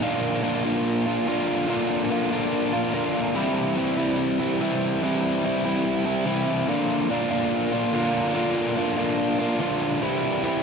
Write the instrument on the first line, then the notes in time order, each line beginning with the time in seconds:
overdriven electric guitar
0.01 A#2 D3 A#3 D4 F4
0.43 D3 A#3 D4 F4
0.64 A#3 D4 F4
1.06 A#3 D4 F4
1.26 A#2 D3 A#3 D4 F4
1.68 A#2 D3 A#3 D4 F4
2.10 D3 A#3 D4 F4
2.31 A#3 D4 F4
2.72 A#3 D4 F4
2.93 A#2 D3 A#3 D4 F4
3.35 C3 E3 G3 C4 E4
3.76 E3 G3 C4 E4
3.97 G3 C4 E4
4.39 G3 C4 E4
4.60 C3 E3 G3 C4 E4
5.02 C3 E3 G3 C4 E4
5.44 E3 G3 C4 E4
5.65 G3 C4 E4
6.05 G3 C4 E4
6.26 C3 E3 G3 C4 E4
6.68 A#2 D3 A#3 D4 F4
7.10 D3 A#3 D4 F4
7.31 A#3 D4 F4
7.72 A#3 D4 F4
7.93 A#2 D3 A#3 D4 F4
8.34 A#2 D3 A#3 D4 F4
8.76 D3 A#3 D4 F4
8.98 A#3 D4 F4
9.40 A#3 D4 F4
9.60 A#2 D3 A#3 D4 F4
10.01 C3 E3 G3 C4 E4
10.43 E3 G3 C4 E4